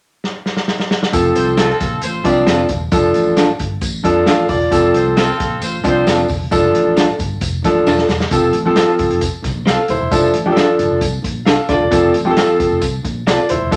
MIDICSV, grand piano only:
0, 0, Header, 1, 2, 480
1, 0, Start_track
1, 0, Key_signature, -1, "major"
1, 0, Tempo, 449438
1, 1210, Time_signature, 4, 2, 24, 8
1, 14699, End_track
2, 0, Start_track
2, 0, Title_t, "Grand piano"
2, 0, Program_c, 0, 0
2, 1202, Note_on_c, 0, 53, 77
2, 1206, Note_on_c, 0, 60, 68
2, 1213, Note_on_c, 0, 69, 84
2, 1772, Note_off_c, 0, 53, 0
2, 1774, Note_off_c, 0, 60, 0
2, 1777, Note_off_c, 0, 69, 0
2, 2393, Note_on_c, 0, 53, 82
2, 2398, Note_on_c, 0, 60, 75
2, 2406, Note_on_c, 0, 62, 87
2, 2826, Note_off_c, 0, 53, 0
2, 2828, Note_off_c, 0, 60, 0
2, 2832, Note_off_c, 0, 62, 0
2, 3115, Note_on_c, 0, 53, 81
2, 3118, Note_on_c, 0, 62, 69
2, 3126, Note_on_c, 0, 69, 86
2, 3687, Note_off_c, 0, 53, 0
2, 3689, Note_off_c, 0, 62, 0
2, 3693, Note_off_c, 0, 69, 0
2, 4310, Note_on_c, 0, 53, 81
2, 4322, Note_on_c, 0, 69, 84
2, 4323, Note_on_c, 0, 62, 74
2, 4548, Note_off_c, 0, 69, 0
2, 4560, Note_on_c, 0, 77, 69
2, 4564, Note_on_c, 0, 69, 56
2, 4743, Note_off_c, 0, 53, 0
2, 4750, Note_off_c, 0, 62, 0
2, 4791, Note_off_c, 0, 77, 0
2, 4793, Note_off_c, 0, 69, 0
2, 4797, Note_on_c, 0, 74, 64
2, 4812, Note_on_c, 0, 65, 52
2, 5031, Note_on_c, 0, 53, 73
2, 5036, Note_on_c, 0, 60, 71
2, 5045, Note_on_c, 0, 69, 91
2, 5257, Note_off_c, 0, 74, 0
2, 5265, Note_off_c, 0, 65, 0
2, 5605, Note_off_c, 0, 53, 0
2, 5607, Note_off_c, 0, 60, 0
2, 5612, Note_off_c, 0, 69, 0
2, 6232, Note_on_c, 0, 53, 82
2, 6237, Note_on_c, 0, 60, 70
2, 6242, Note_on_c, 0, 62, 82
2, 6663, Note_off_c, 0, 53, 0
2, 6666, Note_off_c, 0, 60, 0
2, 6668, Note_off_c, 0, 62, 0
2, 6954, Note_on_c, 0, 53, 84
2, 6961, Note_on_c, 0, 62, 78
2, 6967, Note_on_c, 0, 69, 95
2, 7525, Note_off_c, 0, 53, 0
2, 7529, Note_off_c, 0, 62, 0
2, 7532, Note_off_c, 0, 69, 0
2, 8166, Note_on_c, 0, 53, 79
2, 8171, Note_on_c, 0, 62, 69
2, 8172, Note_on_c, 0, 69, 88
2, 8590, Note_off_c, 0, 53, 0
2, 8592, Note_off_c, 0, 62, 0
2, 8592, Note_off_c, 0, 69, 0
2, 8881, Note_on_c, 0, 53, 75
2, 8887, Note_on_c, 0, 60, 70
2, 8890, Note_on_c, 0, 69, 86
2, 9095, Note_off_c, 0, 53, 0
2, 9098, Note_off_c, 0, 60, 0
2, 9099, Note_off_c, 0, 69, 0
2, 9242, Note_on_c, 0, 53, 75
2, 9249, Note_on_c, 0, 60, 72
2, 9255, Note_on_c, 0, 69, 90
2, 9809, Note_off_c, 0, 53, 0
2, 9812, Note_off_c, 0, 60, 0
2, 9816, Note_off_c, 0, 69, 0
2, 10332, Note_on_c, 0, 77, 64
2, 10339, Note_on_c, 0, 69, 54
2, 10556, Note_off_c, 0, 77, 0
2, 10560, Note_off_c, 0, 69, 0
2, 10575, Note_on_c, 0, 72, 68
2, 10581, Note_on_c, 0, 64, 55
2, 10802, Note_on_c, 0, 53, 83
2, 10806, Note_on_c, 0, 62, 76
2, 10816, Note_on_c, 0, 69, 88
2, 11015, Note_off_c, 0, 53, 0
2, 11017, Note_off_c, 0, 62, 0
2, 11023, Note_off_c, 0, 69, 0
2, 11026, Note_off_c, 0, 72, 0
2, 11029, Note_off_c, 0, 64, 0
2, 11167, Note_on_c, 0, 53, 81
2, 11169, Note_on_c, 0, 62, 73
2, 11176, Note_on_c, 0, 67, 77
2, 11228, Note_off_c, 0, 67, 0
2, 11236, Note_on_c, 0, 69, 87
2, 11733, Note_off_c, 0, 53, 0
2, 11733, Note_off_c, 0, 62, 0
2, 11767, Note_off_c, 0, 69, 0
2, 12233, Note_on_c, 0, 77, 60
2, 12242, Note_on_c, 0, 69, 57
2, 12467, Note_off_c, 0, 77, 0
2, 12472, Note_off_c, 0, 69, 0
2, 12485, Note_on_c, 0, 74, 67
2, 12489, Note_on_c, 0, 65, 55
2, 12718, Note_on_c, 0, 53, 81
2, 12724, Note_on_c, 0, 60, 77
2, 12735, Note_on_c, 0, 69, 87
2, 12935, Note_off_c, 0, 53, 0
2, 12938, Note_off_c, 0, 60, 0
2, 12942, Note_off_c, 0, 74, 0
2, 12943, Note_off_c, 0, 69, 0
2, 12944, Note_off_c, 0, 65, 0
2, 13081, Note_on_c, 0, 53, 80
2, 13084, Note_on_c, 0, 60, 80
2, 13090, Note_on_c, 0, 67, 69
2, 13141, Note_on_c, 0, 69, 92
2, 13146, Note_off_c, 0, 67, 0
2, 13652, Note_off_c, 0, 53, 0
2, 13653, Note_off_c, 0, 60, 0
2, 13682, Note_off_c, 0, 69, 0
2, 14174, Note_on_c, 0, 74, 61
2, 14184, Note_on_c, 0, 65, 50
2, 14401, Note_off_c, 0, 74, 0
2, 14406, Note_off_c, 0, 65, 0
2, 14415, Note_on_c, 0, 72, 70
2, 14429, Note_on_c, 0, 64, 58
2, 14645, Note_on_c, 0, 53, 78
2, 14649, Note_on_c, 0, 62, 71
2, 14656, Note_on_c, 0, 69, 95
2, 14699, Note_off_c, 0, 53, 0
2, 14699, Note_off_c, 0, 62, 0
2, 14699, Note_off_c, 0, 64, 0
2, 14699, Note_off_c, 0, 69, 0
2, 14699, Note_off_c, 0, 72, 0
2, 14699, End_track
0, 0, End_of_file